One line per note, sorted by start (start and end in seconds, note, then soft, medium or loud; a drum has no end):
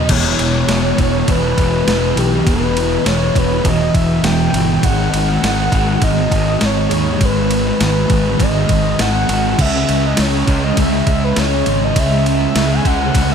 0.00 0.13 D#5 loud
0.09 0.34 E1 medium
0.09 0.67 E2 medium
0.09 0.68 B2 medium
0.09 0.70 E3 loud
0.09 1.32 C#5 loud
0.09 kick loud
0.09 crash loud
0.09 ride loud
0.39 0.64 E1 medium
0.39 ride medium
0.55 snare soft
0.68 0.93 E1 medium
0.68 1.26 E2 medium
0.68 1.00 B2 medium
0.68 0.97 E3 medium
0.68 snare loud
0.68 ride medium
0.97 1.23 E1 loud
0.97 1.26 B2 medium
0.97 1.28 E3 medium
0.97 kick medium
0.97 ride medium
1.26 1.53 E1 loud
1.26 1.84 E2 medium
1.26 1.85 B2 medium
1.26 1.87 E3 medium
1.26 kick medium
1.26 ride loud
1.31 2.20 B4 loud
1.58 1.82 E1 medium
1.58 kick medium
1.58 ride medium
1.85 2.12 E1 medium
1.85 2.44 E2 medium
1.85 2.16 B2 medium
1.85 2.14 E3 medium
1.85 snare loud
1.85 ride loud
2.15 2.41 B1 medium
2.15 2.45 B2 medium
2.15 2.47 E3 medium
2.15 2.49 G4 medium
2.15 ride medium
2.45 2.96 E1 loud
2.45 3.02 E2 medium
2.45 3.04 B2 loud
2.45 3.05 E3 loud
2.45 3.09 B4 loud
2.45 kick loud
2.45 ride medium
2.77 ride medium
3.03 3.30 E1 medium
3.03 3.62 E2 medium
3.03 3.35 B2 medium
3.03 3.32 E3 medium
3.03 3.40 C#5 loud
3.03 snare loud
3.03 ride loud
3.34 3.60 E1 medium
3.34 3.64 B2 medium
3.34 3.65 E3 medium
3.34 kick medium
3.34 ride medium
3.38 3.66 B4 medium
3.63 3.89 E1 loud
3.63 4.22 E2 medium
3.63 4.23 B2 medium
3.63 4.25 E3 medium
3.63 3.96 D#5 loud
3.63 kick medium
3.63 ride loud
3.80 snare soft
3.94 4.19 E1 medium
3.94 4.26 E5 loud
3.94 kick medium
3.94 ride medium
4.23 4.48 E1 loud
4.23 4.81 E2 medium
4.23 4.54 B2 medium
4.23 4.51 E3 medium
4.23 4.85 G5 loud
4.23 snare loud
4.23 ride loud
4.52 4.78 G1 medium
4.52 4.82 B2 medium
4.52 4.81 E3 medium
4.52 ride medium
4.81 5.08 G#1 loud
4.81 5.41 G#2 medium
4.81 5.42 D#3 medium
4.81 5.44 G#3 loud
4.81 6.05 F#5 loud
4.81 kick loud
4.81 ride loud
5.13 5.37 G#1 medium
5.13 ride medium
5.29 snare soft
5.42 5.67 G#1 loud
5.42 6.01 G#2 medium
5.42 5.73 D#3 medium
5.42 5.71 G#3 medium
5.42 snare loud
5.42 ride loud
5.71 5.97 G#1 loud
5.71 6.01 D#3 medium
5.71 6.03 G#3 medium
5.71 kick medium
5.71 ride medium
6.01 6.27 G#1 loud
6.01 6.58 G#2 medium
6.01 6.60 D#3 medium
6.01 6.62 G#3 medium
6.01 6.67 D#5 loud
6.01 kick medium
6.01 ride medium
6.17 snare soft
6.31 6.56 G#1 medium
6.31 kick medium
6.31 ride medium
6.60 6.86 G#1 loud
6.60 7.18 G#2 medium
6.60 6.91 D#3 medium
6.60 6.88 G#3 medium
6.60 snare loud
6.60 ride medium
6.65 7.27 C#5 loud
6.89 7.16 D#2 medium
6.89 7.19 D#3 medium
6.89 7.21 G#3 medium
6.89 ride medium
7.19 7.70 G#1 medium
7.19 7.77 G#2 medium
7.19 7.79 D#3 medium
7.19 7.81 G#3 medium
7.19 kick loud
7.19 ride medium
7.25 7.82 B4 loud
7.51 ride medium
7.67 snare soft
7.78 8.05 G#1 loud
7.78 8.36 G#2 medium
7.78 8.10 D#3 medium
7.78 8.08 G#3 medium
7.78 snare loud
7.78 ride loud
7.83 8.43 B4 loud
8.08 8.35 G#1 medium
8.08 8.38 D#3 medium
8.08 8.40 G#3 medium
8.08 kick medium
8.08 ride medium
8.38 8.64 G#1 loud
8.38 8.97 G#2 medium
8.38 8.99 D#3 medium
8.38 9.01 G#3 medium
8.38 kick medium
8.38 ride medium
8.42 9.02 D#5 loud
8.69 8.94 G#1 medium
8.69 kick medium
8.69 ride medium
8.98 9.24 G#1 medium
8.98 9.56 G#2 medium
8.98 9.30 D#3 medium
8.98 9.28 G#3 medium
8.98 9.62 F#5 loud
8.98 snare loud
8.98 ride loud
9.28 9.53 G#1 medium
9.28 9.58 D#3 medium
9.28 9.59 G#3 medium
9.28 ride medium
9.59 9.83 C#2 medium
9.59 10.16 C#3 medium
9.59 10.18 G#3 loud
9.59 10.19 C#4 loud
9.59 10.07 E5 loud
9.59 kick loud
9.59 crash loud
9.89 10.13 C#2 medium
9.89 ride medium
10.03 10.23 D#5 loud
10.03 snare soft
10.17 10.43 C#2 medium
10.17 10.76 C#3 medium
10.17 10.49 G#3 medium
10.17 10.46 C#4 medium
10.17 snare loud
10.17 ride loud
10.22 10.64 C#5 loud
10.46 10.72 C#2 loud
10.46 10.77 G#3 medium
10.46 10.78 C#4 medium
10.46 kick medium
10.46 ride medium
10.64 10.77 D#5 loud
10.76 11.02 C#2 loud
10.76 11.35 C#3 medium
10.76 11.38 G#3 medium
10.76 11.38 C#4 medium
10.76 11.25 E5 loud
10.76 kick medium
10.76 ride loud
10.92 snare soft
11.07 11.31 C#2 medium
11.07 kick medium
11.07 ride medium
11.24 11.41 B4 loud
11.36 11.61 C#2 loud
11.36 11.94 C#3 medium
11.36 11.68 G#3 medium
11.36 11.64 C#4 medium
11.36 11.86 C#5 loud
11.36 snare loud
11.36 ride medium
11.66 11.91 G#1 medium
11.66 11.96 G#3 medium
11.66 11.97 C#4 medium
11.66 ride medium
11.84 12.00 D#5 loud
11.95 12.45 C#2 loud
11.95 12.54 C#3 medium
11.95 12.56 G#3 medium
11.95 12.56 C#4 loud
11.95 kick loud
11.95 ride loud
11.99 12.27 E5 loud
12.26 12.74 E5 loud
12.26 ride medium
12.41 snare soft
12.55 12.80 C#2 medium
12.55 13.14 C#3 medium
12.55 12.87 G#3 medium
12.55 12.84 C#4 medium
12.55 snare loud
12.55 ride loud
12.72 12.88 G#5 loud
12.85 13.10 C#2 medium
12.85 13.16 G#3 medium
12.85 13.16 C#4 medium
12.85 13.33 F#5 loud
12.85 kick medium
12.85 ride medium
13.14 13.35 C#2 loud
13.14 13.35 C#3 medium
13.14 13.35 G#3 medium
13.14 13.35 C#4 medium
13.14 kick medium
13.14 ride loud
13.30 snare soft